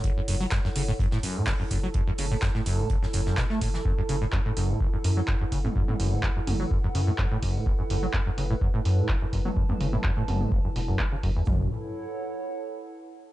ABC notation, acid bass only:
X:1
M:4/4
L:1/16
Q:1/4=126
K:F#m
V:1 name="Acid bass" clef=bass
F,,, F,, F,, F, F,, F,, C, A,, F,, A,, F,, A,, F,,, F,, F,, F, | F,, F,, C, A,, F,, A,, F,, A,, F,,, F,, F,, F,, B,, A, A,, E, | F,, F,, C, A,, F,, A,, F,, A,, F,,, F,, F,, F, F,, F,, C, A,, | F,, A,, F,, A,, F,,, F,, F,, F, F,, F,, C, A,, F,, A,, F,, A,, |
F,,, F,, F,, F, F,, F,, C, A,, F,, A,, F,, A,, F,,, F,, F,, F, | F,, F,, C, A,, F,, A,, F,, A,, F,,, F,, B,, F,, F, C, F,, E,, | F,,2 z12 z2 |]